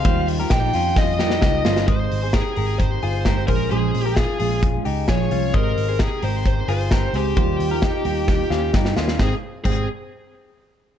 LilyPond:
<<
  \new Staff \with { instrumentName = "Lead electric guitar" } { \time 4/4 \key aes \major \tempo 4 = 131 f''8 r8 g''4 ees''4 ees''4 | c''4 aes'4 c''4. bes'8 | aes'4 aes'4 r4 des''4 | bes'4 aes'8 c''8 c''8 c''4 g'8~ |
g'2. r4 | aes'8 r8 aes'8 r2 r8 | }
  \new Staff \with { instrumentName = "Clean electric guitar" } { \time 4/4 \key aes \major <g' c''>8. <g' bes'>16 <ees' g'>8 <des' f'>4 <ees' g'>8 <ees' g'>8 <des' f'>8 | <c'' ees''>8. <aes' c''>16 <g' bes'>8 <g' bes'>4 <f' aes'>8 <g' bes'>8 <aes' c''>8 | <aes' c''>8. <g' bes'>16 <f' aes'>8 <f' aes'>4 <ees' g'>8 <f' aes'>8 <des' f'>8 | <c'' ees''>8. <aes' c''>16 <g' bes'>8 <g' bes'>4 <f' aes'>8 <g' bes'>8 <aes' c''>8 |
<g' c''>8. <g' bes'>16 <ees' g'>8 <ees' g'>4 <des' f'>8 <ees' g'>8 <des' f'>8 | c'8 r8 c'8 r2 r8 | }
  \new Staff \with { instrumentName = "Steel-string acoustic guitar" } { \time 4/4 \key aes \major <ees g bes ees' f'>8. <bes ees' f'>8 <bes ees' f'>4~ <bes ees' f'>16 <g bes ees' f'>8 <g bes ees' f'>8 <g bes ees' f'>8 | <aes c' ees' g'>8. <c' ees' g'>8. <aes c' ees' g'>8. <c' ees' g'>8. <aes c' ees' g'>8 <f aes des' aes'>8 | <bes, f aes des' aes'>8. <aes des' aes'>8. <f aes des' aes'>8. <aes des' aes'>8. <f aes des' aes'>8 <f aes des' aes'>8 | <aes c' ees' g'>8. <c' ees' g'>8. <aes c' ees' g'>8. <c' ees' g'>8. <aes c' ees' g'>8 <aes c' ees' g'>8 |
<ees g bes ees' f'>8. <bes ees' f'>8. <g bes ees' f'>8. <bes ees' f'>8. <g bes ees' f'>8 <g bes ees' f'>8 | <aes c' ees' g'>16 r8. <aes c' ees' g'>8 r2 r8 | }
  \new Staff \with { instrumentName = "String machine" } { \clef bass \time 4/4 \key aes \major <ees g f'>1 | r1 | r1 | r1 |
r1 | r1 | }
  \new Staff \with { instrumentName = "Picked electric bass" } { \clef bass \time 4/4 \key aes \major ees,4 bes,,8 f,4. des,8 g,,8 | aes,,8 aes,,8. r16 aes,,4 g,,4 bes,,8 | bes,,8 bes,,8. r16 bes,,4 des,8 bes,,8 c,8 | aes,,8 aes,,8. r16 aes,,4 g,,4 des,8 |
ees,8 ees,8. r16 ees,4 ees,8 g,8 ees,8 | aes,,8 r8 aes,,8 r2 r8 | }
  \new DrumStaff \with { instrumentName = "Drums" } \drummode { \time 4/4 <hhp bd cymr>8 hho8 <hhp bd cymr sn>8 hho8 <bd sn>8 sn16 sn16 <bd sn>8 sn16 sn16 | <hh bd>8 hho8 <hh bd sn>8 hho8 <hh bd>8 hho8 <hh bd sn>8 <hho bd>8 | hh8 hho8 <hh bd sn>8 hho8 <hh bd>8 hho8 <hh bd sn>8 hho8 | <hh bd>8 hho8 <hh bd sn>8 hho8 <hh bd>8 hho8 <hh bd sn>8 hho8 |
<hh bd>8 hho8 <hh bd sn>8 hho8 <bd sn>8 sn8 <bd sn>16 sn16 sn16 sn16 | <bd sn>4 <cymc bd>4 r4 r4 | }
>>